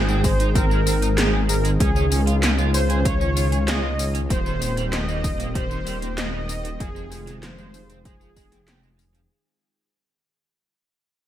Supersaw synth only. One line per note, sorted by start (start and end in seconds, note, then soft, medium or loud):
0.00 0.27 G#4 loud
0.24 0.56 C5 loud
0.55 1.14 A#4 loud
1.18 1.50 G#4 medium
1.49 1.63 A#4 medium
1.80 2.39 G#4 medium
2.74 3.03 C5 loud
3.05 3.64 C#5 loud
3.68 4.11 D#5 loud
4.31 4.95 C5 loud
4.93 5.51 D#5 loud
5.55 6.14 C5 loud
6.18 6.82 D#5 loud
6.81 7.39 G#4 loud
7.43 8.07 C5 loud
8.06 8.95 G#4 medium